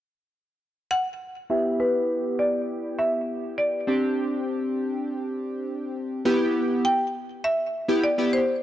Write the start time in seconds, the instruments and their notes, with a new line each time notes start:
0.91 marimba F#5
1.50 synth keys B3 E4 G4, marimba E5
1.80 marimba B4
2.39 marimba D5
2.99 marimba E5
3.58 marimba D5
3.87 synth keys C4 D4 G4
6.25 synth keys B3 E4 G4
6.85 marimba G5
7.44 marimba E5
7.88 synth keys B3 E4 G4
8.04 marimba D5
8.18 synth keys B3 E4 G4
8.33 marimba C5